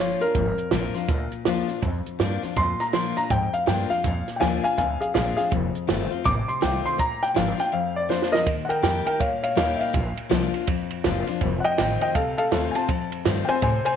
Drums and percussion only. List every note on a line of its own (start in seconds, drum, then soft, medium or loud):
0.21 closed hi-hat medium
0.35 kick loud
0.35 closed hi-hat medium
0.58 closed hi-hat medium
0.71 snare loud
0.71 closed hi-hat medium
0.95 snare soft
0.95 closed hi-hat medium
1.08 kick loud
1.08 closed hi-hat medium
1.31 closed hi-hat medium
1.45 snare loud
1.45 closed hi-hat medium
1.69 closed hi-hat medium
1.82 kick loud
1.82 closed hi-hat medium
2.06 closed hi-hat medium
2.20 snare loud
2.20 closed hi-hat medium
2.43 snare soft
2.43 closed hi-hat soft
2.57 kick loud
2.57 closed hi-hat medium
2.80 snare soft
2.80 closed hi-hat medium
2.93 snare loud
2.93 closed hi-hat medium
3.17 snare soft
3.17 closed hi-hat medium
3.30 kick loud
3.30 closed hi-hat medium
3.53 closed hi-hat medium
3.67 snare loud
3.67 closed hi-hat medium
3.90 snare soft
3.90 closed hi-hat medium
4.04 kick loud
4.04 closed hi-hat medium
4.28 snare soft
4.28 closed hi-hat medium
4.41 snare loud
4.41 closed hi-hat medium
4.64 closed hi-hat medium
4.78 kick loud
4.78 closed hi-hat medium
5.01 closed hi-hat medium
5.15 snare loud
5.15 closed hi-hat medium
5.38 snare soft
5.38 closed hi-hat soft
5.52 kick loud
5.52 closed hi-hat medium
5.75 closed hi-hat medium
5.89 snare loud
5.89 closed hi-hat medium
6.12 closed hi-hat medium
6.25 kick loud
6.25 snare soft
6.25 closed hi-hat medium
6.49 closed hi-hat medium
6.62 snare loud
6.62 closed hi-hat medium
6.85 closed hi-hat medium
6.99 kick loud
6.99 closed hi-hat medium
7.23 snare soft
7.23 closed hi-hat medium
7.36 snare loud
7.36 closed hi-hat medium
7.59 snare soft
7.59 closed hi-hat medium
8.10 snare medium
8.22 snare medium
8.34 snare medium
8.47 kick loud
8.47 ride medium
8.70 ride medium
8.83 snare loud
8.83 ride medium
9.07 ride medium
9.20 kick loud
9.20 ride medium
9.43 ride medium
9.57 kick medium
9.57 snare loud
9.57 ride medium
9.80 snare soft
9.80 ride medium
9.94 kick loud
9.94 ride medium
10.17 ride medium
10.31 snare loud
10.31 ride medium
10.54 ride medium
10.67 kick loud
10.67 ride medium
10.90 ride medium
11.04 kick medium
11.04 snare loud
11.04 ride medium
11.27 snare soft
11.27 ride medium
11.41 kick loud
11.41 ride medium
11.64 ride medium
11.78 snare loud
11.78 ride medium
12.01 ride medium
12.15 kick loud
12.15 ride medium
12.38 ride medium
12.52 kick medium
12.52 snare loud
12.52 ride medium
12.75 snare soft
12.75 ride medium
12.89 kick loud
12.89 ride medium
13.12 ride medium
13.25 snare loud
13.25 ride medium
13.49 ride medium
13.62 kick loud
13.62 ride medium
13.86 ride medium